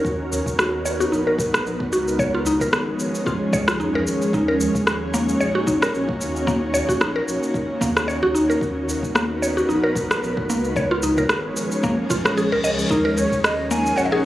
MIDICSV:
0, 0, Header, 1, 8, 480
1, 0, Start_track
1, 0, Key_signature, -6, "minor"
1, 0, Tempo, 535714
1, 42, Time_signature, 4, 2, 24, 8
1, 12768, End_track
2, 0, Start_track
2, 0, Title_t, "Ney"
2, 0, Program_c, 0, 77
2, 11559, Note_on_c, 0, 70, 94
2, 11807, Note_on_c, 0, 73, 95
2, 11821, Note_off_c, 0, 70, 0
2, 12030, Note_off_c, 0, 73, 0
2, 12035, Note_on_c, 0, 75, 94
2, 12261, Note_off_c, 0, 75, 0
2, 12279, Note_on_c, 0, 80, 105
2, 12515, Note_on_c, 0, 78, 100
2, 12528, Note_off_c, 0, 80, 0
2, 12597, Note_on_c, 0, 75, 81
2, 12611, Note_off_c, 0, 78, 0
2, 12651, Note_on_c, 0, 78, 112
2, 12664, Note_off_c, 0, 75, 0
2, 12768, Note_off_c, 0, 78, 0
2, 12768, End_track
3, 0, Start_track
3, 0, Title_t, "Synth pluck"
3, 0, Program_c, 1, 84
3, 526, Note_on_c, 1, 66, 96
3, 753, Note_off_c, 1, 66, 0
3, 765, Note_on_c, 1, 73, 93
3, 890, Note_off_c, 1, 73, 0
3, 899, Note_on_c, 1, 66, 100
3, 999, Note_off_c, 1, 66, 0
3, 1005, Note_on_c, 1, 63, 78
3, 1130, Note_off_c, 1, 63, 0
3, 1138, Note_on_c, 1, 70, 92
3, 1238, Note_off_c, 1, 70, 0
3, 1726, Note_on_c, 1, 66, 98
3, 1954, Note_off_c, 1, 66, 0
3, 1965, Note_on_c, 1, 73, 102
3, 2090, Note_off_c, 1, 73, 0
3, 2101, Note_on_c, 1, 65, 99
3, 2200, Note_off_c, 1, 65, 0
3, 2208, Note_on_c, 1, 63, 72
3, 2332, Note_off_c, 1, 63, 0
3, 2341, Note_on_c, 1, 70, 91
3, 2440, Note_off_c, 1, 70, 0
3, 2925, Note_on_c, 1, 65, 97
3, 3153, Note_off_c, 1, 65, 0
3, 3165, Note_on_c, 1, 73, 100
3, 3290, Note_off_c, 1, 73, 0
3, 3296, Note_on_c, 1, 65, 94
3, 3397, Note_off_c, 1, 65, 0
3, 3404, Note_on_c, 1, 63, 78
3, 3529, Note_off_c, 1, 63, 0
3, 3542, Note_on_c, 1, 70, 103
3, 3640, Note_off_c, 1, 70, 0
3, 3888, Note_on_c, 1, 63, 80
3, 4012, Note_off_c, 1, 63, 0
3, 4017, Note_on_c, 1, 70, 96
3, 4118, Note_off_c, 1, 70, 0
3, 4603, Note_on_c, 1, 58, 94
3, 4729, Note_off_c, 1, 58, 0
3, 4843, Note_on_c, 1, 73, 91
3, 4969, Note_off_c, 1, 73, 0
3, 4973, Note_on_c, 1, 66, 96
3, 5076, Note_off_c, 1, 66, 0
3, 5080, Note_on_c, 1, 63, 75
3, 5207, Note_off_c, 1, 63, 0
3, 5216, Note_on_c, 1, 70, 90
3, 5317, Note_off_c, 1, 70, 0
3, 5799, Note_on_c, 1, 58, 105
3, 5927, Note_off_c, 1, 58, 0
3, 6037, Note_on_c, 1, 73, 98
3, 6166, Note_off_c, 1, 73, 0
3, 6170, Note_on_c, 1, 66, 88
3, 6274, Note_off_c, 1, 66, 0
3, 6279, Note_on_c, 1, 63, 83
3, 6407, Note_off_c, 1, 63, 0
3, 6413, Note_on_c, 1, 70, 100
3, 6516, Note_off_c, 1, 70, 0
3, 7001, Note_on_c, 1, 58, 93
3, 7128, Note_off_c, 1, 58, 0
3, 7238, Note_on_c, 1, 73, 99
3, 7367, Note_off_c, 1, 73, 0
3, 7372, Note_on_c, 1, 66, 101
3, 7475, Note_off_c, 1, 66, 0
3, 7477, Note_on_c, 1, 63, 75
3, 7606, Note_off_c, 1, 63, 0
3, 7613, Note_on_c, 1, 70, 97
3, 7716, Note_off_c, 1, 70, 0
3, 8199, Note_on_c, 1, 58, 101
3, 8327, Note_off_c, 1, 58, 0
3, 8443, Note_on_c, 1, 73, 99
3, 8569, Note_off_c, 1, 73, 0
3, 8575, Note_on_c, 1, 66, 99
3, 8677, Note_off_c, 1, 66, 0
3, 8681, Note_on_c, 1, 63, 79
3, 8808, Note_off_c, 1, 63, 0
3, 8813, Note_on_c, 1, 70, 97
3, 8915, Note_off_c, 1, 70, 0
3, 9405, Note_on_c, 1, 58, 96
3, 9530, Note_off_c, 1, 58, 0
3, 9645, Note_on_c, 1, 73, 104
3, 9770, Note_off_c, 1, 73, 0
3, 9777, Note_on_c, 1, 65, 105
3, 9878, Note_off_c, 1, 65, 0
3, 9884, Note_on_c, 1, 63, 71
3, 10010, Note_off_c, 1, 63, 0
3, 10016, Note_on_c, 1, 70, 96
3, 10117, Note_off_c, 1, 70, 0
3, 10605, Note_on_c, 1, 58, 95
3, 10730, Note_off_c, 1, 58, 0
3, 10845, Note_on_c, 1, 65, 91
3, 10963, Note_off_c, 1, 65, 0
3, 10977, Note_on_c, 1, 70, 71
3, 11078, Note_off_c, 1, 70, 0
3, 11088, Note_on_c, 1, 68, 97
3, 11161, Note_off_c, 1, 68, 0
3, 11221, Note_on_c, 1, 70, 102
3, 11319, Note_off_c, 1, 70, 0
3, 11325, Note_on_c, 1, 75, 93
3, 11443, Note_off_c, 1, 75, 0
3, 11564, Note_on_c, 1, 63, 84
3, 11689, Note_off_c, 1, 63, 0
3, 11692, Note_on_c, 1, 70, 102
3, 11795, Note_off_c, 1, 70, 0
3, 12283, Note_on_c, 1, 58, 94
3, 12409, Note_off_c, 1, 58, 0
3, 12522, Note_on_c, 1, 73, 92
3, 12648, Note_off_c, 1, 73, 0
3, 12653, Note_on_c, 1, 68, 97
3, 12756, Note_off_c, 1, 68, 0
3, 12768, End_track
4, 0, Start_track
4, 0, Title_t, "Ambient pad"
4, 0, Program_c, 2, 92
4, 0, Note_on_c, 2, 66, 73
4, 0, Note_on_c, 2, 70, 78
4, 40, Note_on_c, 2, 59, 78
4, 43, Note_on_c, 2, 71, 93
4, 46, Note_on_c, 2, 63, 69
4, 1925, Note_off_c, 2, 70, 0
4, 1926, Note_off_c, 2, 66, 0
4, 1942, Note_off_c, 2, 59, 0
4, 1943, Note_off_c, 2, 71, 0
4, 1945, Note_off_c, 2, 63, 0
4, 1950, Note_on_c, 2, 56, 70
4, 1951, Note_on_c, 2, 68, 77
4, 1954, Note_on_c, 2, 53, 75
4, 1954, Note_on_c, 2, 61, 76
4, 1954, Note_on_c, 2, 73, 86
4, 3857, Note_off_c, 2, 56, 0
4, 3857, Note_off_c, 2, 68, 0
4, 3859, Note_off_c, 2, 53, 0
4, 3881, Note_on_c, 2, 58, 82
4, 3883, Note_on_c, 2, 63, 76
4, 3883, Note_on_c, 2, 66, 71
4, 7682, Note_off_c, 2, 61, 0
4, 7682, Note_off_c, 2, 73, 0
4, 7686, Note_off_c, 2, 58, 0
4, 7712, Note_on_c, 2, 70, 76
4, 7713, Note_on_c, 2, 71, 90
4, 7717, Note_on_c, 2, 59, 77
4, 9607, Note_off_c, 2, 63, 0
4, 9607, Note_off_c, 2, 66, 0
4, 9618, Note_off_c, 2, 70, 0
4, 9618, Note_off_c, 2, 71, 0
4, 9620, Note_off_c, 2, 59, 0
4, 9636, Note_on_c, 2, 68, 72
4, 9637, Note_on_c, 2, 73, 83
4, 9638, Note_on_c, 2, 53, 82
4, 9641, Note_on_c, 2, 56, 74
4, 9641, Note_on_c, 2, 61, 74
4, 11540, Note_off_c, 2, 68, 0
4, 11540, Note_off_c, 2, 73, 0
4, 11541, Note_off_c, 2, 53, 0
4, 11542, Note_off_c, 2, 56, 0
4, 11542, Note_off_c, 2, 61, 0
4, 11564, Note_on_c, 2, 70, 84
4, 11564, Note_on_c, 2, 73, 88
4, 11565, Note_on_c, 2, 63, 72
4, 11566, Note_on_c, 2, 66, 71
4, 11567, Note_on_c, 2, 61, 70
4, 12768, Note_off_c, 2, 61, 0
4, 12768, Note_off_c, 2, 63, 0
4, 12768, Note_off_c, 2, 66, 0
4, 12768, Note_off_c, 2, 70, 0
4, 12768, Note_off_c, 2, 73, 0
4, 12768, End_track
5, 0, Start_track
5, 0, Title_t, "Sub bass"
5, 0, Program_c, 3, 38
5, 43, Note_on_c, 3, 39, 90
5, 953, Note_off_c, 3, 39, 0
5, 1003, Note_on_c, 3, 34, 80
5, 1433, Note_off_c, 3, 34, 0
5, 1481, Note_on_c, 3, 34, 99
5, 1660, Note_off_c, 3, 34, 0
5, 1718, Note_on_c, 3, 37, 92
5, 2391, Note_off_c, 3, 37, 0
5, 2441, Note_on_c, 3, 32, 97
5, 2620, Note_off_c, 3, 32, 0
5, 2684, Note_on_c, 3, 32, 81
5, 2778, Note_off_c, 3, 32, 0
5, 3161, Note_on_c, 3, 37, 94
5, 3398, Note_on_c, 3, 41, 91
5, 3412, Note_off_c, 3, 37, 0
5, 3579, Note_off_c, 3, 41, 0
5, 3641, Note_on_c, 3, 32, 99
5, 3820, Note_off_c, 3, 32, 0
5, 3879, Note_on_c, 3, 39, 94
5, 4791, Note_off_c, 3, 39, 0
5, 4838, Note_on_c, 3, 34, 87
5, 5271, Note_off_c, 3, 34, 0
5, 5319, Note_on_c, 3, 34, 98
5, 5499, Note_off_c, 3, 34, 0
5, 5561, Note_on_c, 3, 39, 94
5, 6232, Note_off_c, 3, 39, 0
5, 6274, Note_on_c, 3, 34, 102
5, 6456, Note_off_c, 3, 34, 0
5, 6518, Note_on_c, 3, 34, 81
5, 6615, Note_off_c, 3, 34, 0
5, 6997, Note_on_c, 3, 39, 97
5, 7670, Note_off_c, 3, 39, 0
5, 7715, Note_on_c, 3, 39, 91
5, 8629, Note_off_c, 3, 39, 0
5, 8676, Note_on_c, 3, 34, 81
5, 9110, Note_off_c, 3, 34, 0
5, 9159, Note_on_c, 3, 34, 90
5, 9339, Note_off_c, 3, 34, 0
5, 9399, Note_on_c, 3, 37, 103
5, 10071, Note_off_c, 3, 37, 0
5, 10118, Note_on_c, 3, 32, 102
5, 10298, Note_off_c, 3, 32, 0
5, 10361, Note_on_c, 3, 32, 81
5, 10456, Note_off_c, 3, 32, 0
5, 10840, Note_on_c, 3, 34, 94
5, 11272, Note_off_c, 3, 34, 0
5, 11316, Note_on_c, 3, 37, 94
5, 11497, Note_off_c, 3, 37, 0
5, 11560, Note_on_c, 3, 39, 93
5, 12472, Note_off_c, 3, 39, 0
5, 12518, Note_on_c, 3, 34, 83
5, 12768, Note_off_c, 3, 34, 0
5, 12768, End_track
6, 0, Start_track
6, 0, Title_t, "Reverse cymbal"
6, 0, Program_c, 4, 119
6, 10603, Note_on_c, 4, 60, 60
6, 11563, Note_off_c, 4, 60, 0
6, 12768, End_track
7, 0, Start_track
7, 0, Title_t, "Udu"
7, 293, Note_on_c, 9, 64, 92
7, 383, Note_off_c, 9, 64, 0
7, 1245, Note_on_c, 9, 64, 93
7, 1335, Note_off_c, 9, 64, 0
7, 2195, Note_on_c, 9, 64, 100
7, 2285, Note_off_c, 9, 64, 0
7, 3532, Note_on_c, 9, 64, 86
7, 3622, Note_off_c, 9, 64, 0
7, 4129, Note_on_c, 9, 64, 89
7, 4218, Note_off_c, 9, 64, 0
7, 5088, Note_on_c, 9, 64, 79
7, 5178, Note_off_c, 9, 64, 0
7, 6040, Note_on_c, 9, 64, 90
7, 6130, Note_off_c, 9, 64, 0
7, 7369, Note_on_c, 9, 64, 82
7, 7459, Note_off_c, 9, 64, 0
7, 7954, Note_on_c, 9, 64, 83
7, 8044, Note_off_c, 9, 64, 0
7, 8923, Note_on_c, 9, 64, 80
7, 9013, Note_off_c, 9, 64, 0
7, 9879, Note_on_c, 9, 64, 87
7, 9969, Note_off_c, 9, 64, 0
7, 11220, Note_on_c, 9, 64, 76
7, 11310, Note_off_c, 9, 64, 0
7, 11809, Note_on_c, 9, 64, 99
7, 11899, Note_off_c, 9, 64, 0
7, 12768, End_track
8, 0, Start_track
8, 0, Title_t, "Drums"
8, 41, Note_on_c, 9, 36, 103
8, 50, Note_on_c, 9, 69, 33
8, 131, Note_off_c, 9, 36, 0
8, 139, Note_off_c, 9, 69, 0
8, 292, Note_on_c, 9, 69, 78
8, 381, Note_off_c, 9, 69, 0
8, 414, Note_on_c, 9, 36, 63
8, 425, Note_on_c, 9, 69, 46
8, 504, Note_off_c, 9, 36, 0
8, 514, Note_off_c, 9, 69, 0
8, 528, Note_on_c, 9, 37, 81
8, 531, Note_on_c, 9, 69, 34
8, 617, Note_off_c, 9, 37, 0
8, 621, Note_off_c, 9, 69, 0
8, 768, Note_on_c, 9, 69, 76
8, 858, Note_off_c, 9, 69, 0
8, 904, Note_on_c, 9, 69, 46
8, 993, Note_off_c, 9, 69, 0
8, 1013, Note_on_c, 9, 69, 32
8, 1103, Note_off_c, 9, 69, 0
8, 1241, Note_on_c, 9, 36, 101
8, 1251, Note_on_c, 9, 69, 80
8, 1331, Note_off_c, 9, 36, 0
8, 1341, Note_off_c, 9, 69, 0
8, 1381, Note_on_c, 9, 37, 76
8, 1385, Note_on_c, 9, 69, 44
8, 1471, Note_off_c, 9, 37, 0
8, 1474, Note_off_c, 9, 69, 0
8, 1492, Note_on_c, 9, 69, 36
8, 1582, Note_off_c, 9, 69, 0
8, 1614, Note_on_c, 9, 36, 100
8, 1704, Note_off_c, 9, 36, 0
8, 1727, Note_on_c, 9, 69, 76
8, 1816, Note_off_c, 9, 69, 0
8, 1862, Note_on_c, 9, 69, 44
8, 1952, Note_off_c, 9, 69, 0
8, 1962, Note_on_c, 9, 36, 107
8, 1968, Note_on_c, 9, 69, 34
8, 2051, Note_off_c, 9, 36, 0
8, 2057, Note_off_c, 9, 69, 0
8, 2205, Note_on_c, 9, 69, 74
8, 2294, Note_off_c, 9, 69, 0
8, 2334, Note_on_c, 9, 36, 58
8, 2340, Note_on_c, 9, 69, 46
8, 2424, Note_off_c, 9, 36, 0
8, 2429, Note_off_c, 9, 69, 0
8, 2445, Note_on_c, 9, 37, 78
8, 2449, Note_on_c, 9, 69, 35
8, 2535, Note_off_c, 9, 37, 0
8, 2538, Note_off_c, 9, 69, 0
8, 2684, Note_on_c, 9, 69, 73
8, 2774, Note_off_c, 9, 69, 0
8, 2821, Note_on_c, 9, 69, 45
8, 2910, Note_off_c, 9, 69, 0
8, 2921, Note_on_c, 9, 36, 96
8, 2931, Note_on_c, 9, 69, 32
8, 3011, Note_off_c, 9, 36, 0
8, 3021, Note_off_c, 9, 69, 0
8, 3162, Note_on_c, 9, 36, 107
8, 3166, Note_on_c, 9, 69, 78
8, 3251, Note_off_c, 9, 36, 0
8, 3256, Note_off_c, 9, 69, 0
8, 3295, Note_on_c, 9, 37, 71
8, 3299, Note_on_c, 9, 69, 41
8, 3385, Note_off_c, 9, 37, 0
8, 3388, Note_off_c, 9, 69, 0
8, 3408, Note_on_c, 9, 69, 33
8, 3498, Note_off_c, 9, 69, 0
8, 3647, Note_on_c, 9, 69, 73
8, 3737, Note_off_c, 9, 69, 0
8, 3780, Note_on_c, 9, 69, 43
8, 3870, Note_off_c, 9, 69, 0
8, 3881, Note_on_c, 9, 36, 98
8, 3886, Note_on_c, 9, 69, 31
8, 3971, Note_off_c, 9, 36, 0
8, 3976, Note_off_c, 9, 69, 0
8, 4126, Note_on_c, 9, 69, 78
8, 4216, Note_off_c, 9, 69, 0
8, 4254, Note_on_c, 9, 36, 60
8, 4261, Note_on_c, 9, 69, 44
8, 4344, Note_off_c, 9, 36, 0
8, 4351, Note_off_c, 9, 69, 0
8, 4364, Note_on_c, 9, 37, 76
8, 4367, Note_on_c, 9, 69, 33
8, 4453, Note_off_c, 9, 37, 0
8, 4457, Note_off_c, 9, 69, 0
8, 4606, Note_on_c, 9, 69, 76
8, 4696, Note_off_c, 9, 69, 0
8, 4738, Note_on_c, 9, 69, 43
8, 4828, Note_off_c, 9, 69, 0
8, 4845, Note_on_c, 9, 69, 30
8, 4935, Note_off_c, 9, 69, 0
8, 5080, Note_on_c, 9, 36, 98
8, 5085, Note_on_c, 9, 69, 72
8, 5170, Note_off_c, 9, 36, 0
8, 5174, Note_off_c, 9, 69, 0
8, 5218, Note_on_c, 9, 37, 70
8, 5222, Note_on_c, 9, 69, 42
8, 5308, Note_off_c, 9, 37, 0
8, 5311, Note_off_c, 9, 69, 0
8, 5327, Note_on_c, 9, 69, 32
8, 5417, Note_off_c, 9, 69, 0
8, 5453, Note_on_c, 9, 36, 94
8, 5543, Note_off_c, 9, 36, 0
8, 5565, Note_on_c, 9, 69, 71
8, 5654, Note_off_c, 9, 69, 0
8, 5701, Note_on_c, 9, 69, 44
8, 5790, Note_off_c, 9, 69, 0
8, 5799, Note_on_c, 9, 36, 100
8, 5806, Note_on_c, 9, 69, 28
8, 5889, Note_off_c, 9, 36, 0
8, 5896, Note_off_c, 9, 69, 0
8, 6043, Note_on_c, 9, 69, 77
8, 6133, Note_off_c, 9, 69, 0
8, 6171, Note_on_c, 9, 36, 60
8, 6179, Note_on_c, 9, 69, 43
8, 6260, Note_off_c, 9, 36, 0
8, 6269, Note_off_c, 9, 69, 0
8, 6282, Note_on_c, 9, 37, 74
8, 6286, Note_on_c, 9, 69, 34
8, 6372, Note_off_c, 9, 37, 0
8, 6375, Note_off_c, 9, 69, 0
8, 6526, Note_on_c, 9, 69, 72
8, 6615, Note_off_c, 9, 69, 0
8, 6659, Note_on_c, 9, 69, 43
8, 6749, Note_off_c, 9, 69, 0
8, 6757, Note_on_c, 9, 36, 98
8, 6764, Note_on_c, 9, 69, 29
8, 6847, Note_off_c, 9, 36, 0
8, 6854, Note_off_c, 9, 69, 0
8, 6997, Note_on_c, 9, 36, 95
8, 7005, Note_on_c, 9, 69, 73
8, 7086, Note_off_c, 9, 36, 0
8, 7095, Note_off_c, 9, 69, 0
8, 7138, Note_on_c, 9, 37, 74
8, 7141, Note_on_c, 9, 69, 43
8, 7228, Note_off_c, 9, 37, 0
8, 7231, Note_off_c, 9, 69, 0
8, 7251, Note_on_c, 9, 69, 33
8, 7341, Note_off_c, 9, 69, 0
8, 7487, Note_on_c, 9, 69, 72
8, 7577, Note_off_c, 9, 69, 0
8, 7622, Note_on_c, 9, 69, 42
8, 7711, Note_off_c, 9, 69, 0
8, 7717, Note_on_c, 9, 36, 95
8, 7728, Note_on_c, 9, 69, 30
8, 7806, Note_off_c, 9, 36, 0
8, 7818, Note_off_c, 9, 69, 0
8, 7966, Note_on_c, 9, 69, 69
8, 8056, Note_off_c, 9, 69, 0
8, 8090, Note_on_c, 9, 36, 58
8, 8102, Note_on_c, 9, 69, 40
8, 8180, Note_off_c, 9, 36, 0
8, 8192, Note_off_c, 9, 69, 0
8, 8203, Note_on_c, 9, 37, 74
8, 8206, Note_on_c, 9, 69, 31
8, 8293, Note_off_c, 9, 37, 0
8, 8296, Note_off_c, 9, 69, 0
8, 8449, Note_on_c, 9, 69, 72
8, 8538, Note_off_c, 9, 69, 0
8, 8583, Note_on_c, 9, 69, 40
8, 8672, Note_off_c, 9, 69, 0
8, 8690, Note_on_c, 9, 69, 28
8, 8779, Note_off_c, 9, 69, 0
8, 8919, Note_on_c, 9, 36, 96
8, 8926, Note_on_c, 9, 69, 67
8, 9009, Note_off_c, 9, 36, 0
8, 9016, Note_off_c, 9, 69, 0
8, 9058, Note_on_c, 9, 37, 70
8, 9061, Note_on_c, 9, 69, 39
8, 9147, Note_off_c, 9, 37, 0
8, 9151, Note_off_c, 9, 69, 0
8, 9171, Note_on_c, 9, 69, 31
8, 9261, Note_off_c, 9, 69, 0
8, 9293, Note_on_c, 9, 36, 93
8, 9382, Note_off_c, 9, 36, 0
8, 9406, Note_on_c, 9, 69, 64
8, 9495, Note_off_c, 9, 69, 0
8, 9537, Note_on_c, 9, 69, 39
8, 9627, Note_off_c, 9, 69, 0
8, 9640, Note_on_c, 9, 36, 102
8, 9644, Note_on_c, 9, 69, 29
8, 9729, Note_off_c, 9, 36, 0
8, 9733, Note_off_c, 9, 69, 0
8, 9879, Note_on_c, 9, 69, 75
8, 9969, Note_off_c, 9, 69, 0
8, 10013, Note_on_c, 9, 69, 42
8, 10014, Note_on_c, 9, 36, 60
8, 10103, Note_off_c, 9, 36, 0
8, 10103, Note_off_c, 9, 69, 0
8, 10119, Note_on_c, 9, 37, 75
8, 10122, Note_on_c, 9, 69, 33
8, 10208, Note_off_c, 9, 37, 0
8, 10212, Note_off_c, 9, 69, 0
8, 10363, Note_on_c, 9, 69, 72
8, 10453, Note_off_c, 9, 69, 0
8, 10496, Note_on_c, 9, 69, 42
8, 10586, Note_off_c, 9, 69, 0
8, 10601, Note_on_c, 9, 36, 99
8, 10603, Note_on_c, 9, 69, 31
8, 10691, Note_off_c, 9, 36, 0
8, 10693, Note_off_c, 9, 69, 0
8, 10841, Note_on_c, 9, 36, 91
8, 10844, Note_on_c, 9, 69, 73
8, 10930, Note_off_c, 9, 36, 0
8, 10933, Note_off_c, 9, 69, 0
8, 10981, Note_on_c, 9, 37, 77
8, 10984, Note_on_c, 9, 69, 39
8, 11071, Note_off_c, 9, 37, 0
8, 11074, Note_off_c, 9, 69, 0
8, 11088, Note_on_c, 9, 69, 34
8, 11178, Note_off_c, 9, 69, 0
8, 11327, Note_on_c, 9, 69, 70
8, 11417, Note_off_c, 9, 69, 0
8, 11459, Note_on_c, 9, 69, 38
8, 11548, Note_off_c, 9, 69, 0
8, 11560, Note_on_c, 9, 36, 107
8, 11569, Note_on_c, 9, 69, 30
8, 11650, Note_off_c, 9, 36, 0
8, 11658, Note_off_c, 9, 69, 0
8, 11804, Note_on_c, 9, 69, 76
8, 11894, Note_off_c, 9, 69, 0
8, 11934, Note_on_c, 9, 36, 61
8, 11939, Note_on_c, 9, 69, 41
8, 12023, Note_off_c, 9, 36, 0
8, 12029, Note_off_c, 9, 69, 0
8, 12045, Note_on_c, 9, 37, 83
8, 12048, Note_on_c, 9, 69, 35
8, 12134, Note_off_c, 9, 37, 0
8, 12138, Note_off_c, 9, 69, 0
8, 12284, Note_on_c, 9, 69, 73
8, 12374, Note_off_c, 9, 69, 0
8, 12421, Note_on_c, 9, 69, 45
8, 12510, Note_off_c, 9, 69, 0
8, 12524, Note_on_c, 9, 69, 31
8, 12614, Note_off_c, 9, 69, 0
8, 12768, End_track
0, 0, End_of_file